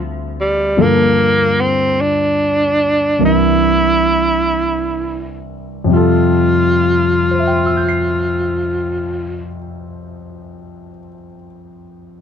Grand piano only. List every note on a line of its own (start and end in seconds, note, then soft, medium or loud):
0.00 0.76 D2 soft
0.00 0.76 D3 soft
0.00 0.78 G3 soft
0.00 0.78 C4 soft
0.00 0.79 E4 soft
0.77 3.21 G2 soft
0.77 3.21 D3 soft
0.77 3.21 F3 soft
0.77 3.21 A#3 soft
0.77 3.21 A4 medium
3.19 5.88 C2 soft
3.19 5.85 C3 soft
3.19 5.89 E3 soft
3.19 5.89 D4 soft
3.19 5.88 A#4 soft
5.84 9.47 F2 soft
5.84 9.49 C3 soft
5.90 9.52 G3 soft
5.90 9.55 F4 soft
5.96 9.58 A4 medium
7.31 10.90 C5 soft
7.39 10.97 E5 soft
7.47 11.06 G5 soft
7.55 11.13 C6 soft
7.66 11.24 E6 soft
7.77 11.35 G6 soft
7.89 11.47 C7 soft